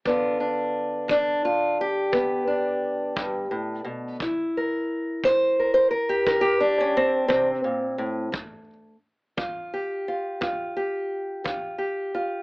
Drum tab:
BD |o--o--o--o--|o--o--o--o--|o--o--o--o--|